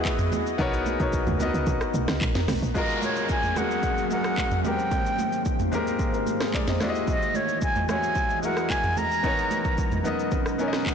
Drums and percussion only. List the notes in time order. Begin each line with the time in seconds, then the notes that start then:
0.05 kick, clap, high conga, shaker
0.19 mid tom, shaker
0.32 high conga, low conga, shaker
0.47 shaker
0.59 kick, low conga, shaker
0.74 shaker
0.86 high conga, shaker
1.00 kick, shaker
1.13 kick, shaker
1.27 mid tom, high conga, shaker
1.40 high conga, low conga, shaker
1.55 shaker
1.67 kick, low conga, shaker
1.81 cross-stick, shaker
1.94 high conga, shaker
2.08 cross-stick, snare, shaker
2.21 kick, clap, high conga, shaker
2.35 snare, mid tom, shaker
2.48 cross-stick, snare, open hi-hat, high conga, low conga, shaker
2.63 shaker
2.75 kick, low conga, shaker
2.90 shaker
3.02 high conga, shaker
3.16 shaker
3.29 kick, shaker
3.43 mid tom, high conga, shaker
3.56 cross-stick, high conga, low conga, shaker
3.71 shaker
3.83 kick, shaker
3.98 shaker
4.10 high conga, shaker
4.24 cross-stick, shaker
4.38 kick, clap, high conga, shaker
4.51 mid tom, shaker
4.65 high conga, low conga, shaker
4.79 shaker
4.91 kick, low conga, shaker
5.06 shaker
5.19 high conga, shaker
5.33 shaker
5.45 kick, shaker
5.60 mid tom, high conga, shaker
5.73 high conga, low conga, shaker
5.87 shaker
5.99 kick, shaker
6.14 shaker
6.26 high conga, shaker
6.41 cross-stick, snare, shaker
6.54 kick, clap, high conga, shaker
6.67 snare, mid tom, shaker
6.81 cross-stick, snare, high conga, low conga, shaker
6.95 shaker
7.07 kick, low conga, shaker
7.22 shaker
7.35 high conga, shaker
7.49 shaker
7.62 kick, shaker
7.76 mid tom, high conga, shaker
7.89 cross-stick, high conga, low conga, shaker
8.03 shaker
8.15 kick, shaker
8.30 shaker
8.43 high conga, shaker
8.57 cross-stick, shaker
8.70 kick, clap, high conga, shaker
8.84 mid tom, shaker
8.97 high conga, low conga, shaker
9.11 shaker
9.23 kick, low conga, shaker
9.38 shaker
9.51 high conga, shaker
9.65 kick, shaker
9.78 kick, shaker
9.92 mid tom, high conga, shaker
10.05 high conga, low conga, shaker
10.19 shaker
10.32 kick, low conga, shaker
10.46 cross-stick, shaker
10.59 high conga, shaker
10.73 cross-stick, snare, shaker
10.86 kick, clap, high conga, shaker